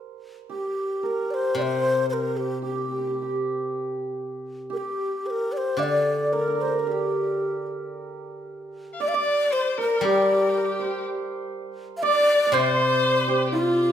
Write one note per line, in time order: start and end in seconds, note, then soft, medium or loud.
0.00 0.99 A#4 soft
0.00 0.97 C5 soft
0.49 2.62 G4 soft
0.49 1.07 G4 medium
1.03 3.86 A#4 medium
1.03 1.32 A#4 medium
1.31 1.57 C5 medium
1.31 1.35 D5 medium
1.55 4.70 C3 soft
1.55 4.21 C5 medium
1.55 1.63 D5 medium
1.62 2.06 C5 medium
2.10 2.38 A#4 medium
2.10 2.14 C5 medium
2.37 2.62 G4 medium
2.62 2.69 G4 soft
2.62 3.37 G4 medium
2.70 2.76 G4 soft
2.76 2.84 G4 soft
2.84 2.91 G4 soft
2.91 2.98 G4 soft
2.98 3.07 G4 soft
3.07 3.14 G4 soft
3.14 3.21 G4 soft
3.22 4.69 G4 soft
4.70 6.86 G4 medium
4.70 4.78 A#4 medium
4.77 5.28 G4 medium
5.26 5.31 C5 medium
5.30 5.54 A#4 medium
5.52 5.58 D5 medium
5.57 5.81 C5 medium
5.77 9.00 D3 soft
5.77 8.23 D5 medium
5.77 5.84 F5 medium
5.83 6.35 D5 medium
6.32 6.39 A#4 medium
6.32 6.63 A#4 medium
6.39 6.47 A#4 soft
6.47 6.55 A#4 medium
6.55 6.62 A#4 soft
6.61 6.71 A#4 soft
6.61 6.81 C5 medium
6.71 9.55 A#4 soft
6.79 6.87 A#4 soft
6.87 10.01 G4 soft
6.87 6.93 A#4 medium
6.92 7.68 G4 medium
8.93 9.02 F5 medium
9.00 9.14 D5 medium
9.00 9.53 D5 medium
9.00 9.10 D5 medium
9.08 9.17 F5 medium
9.14 11.60 D5 medium
9.14 9.54 D5 loud
9.52 9.79 C5 medium
9.52 9.78 C5 medium
9.78 10.06 A#4 medium
9.78 12.61 A#4 medium
9.78 10.06 A#4 medium
10.01 13.03 G3 medium
10.01 10.13 G4 medium
10.01 13.18 G4 medium
10.05 11.05 G4 medium
10.12 10.20 A#4 medium
10.18 10.27 G4 medium
10.25 10.35 A#4 medium
10.33 10.43 G4 medium
10.42 10.51 A#4 medium
10.49 10.59 G4 medium
10.58 10.66 A#4 medium
10.65 11.04 G4 medium
10.79 12.53 C5 medium
11.97 12.04 F5 medium
12.03 12.46 D5 loud
12.03 12.55 D5 loud
12.03 12.45 D5 loud
12.45 12.54 D5 medium
12.45 13.92 D5 medium
12.52 13.92 C3 medium
12.52 13.46 C5 medium
12.52 13.92 C5 medium
12.52 13.51 C5 loud
13.28 13.92 G4 medium
13.47 13.55 G4 medium
13.52 13.92 F4 medium